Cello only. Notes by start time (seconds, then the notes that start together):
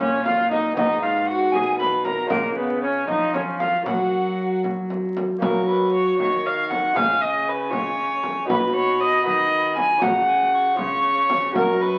0.00 A#2
0.76 G#2
1.53 B2
2.30 C#3
3.08 F3
3.86 F#3
5.42 F#3
6.19 D#3
6.96 C#3
8.49 B2
9.25 D#3
10.02 C#3
10.78 C#3
11.55 F#2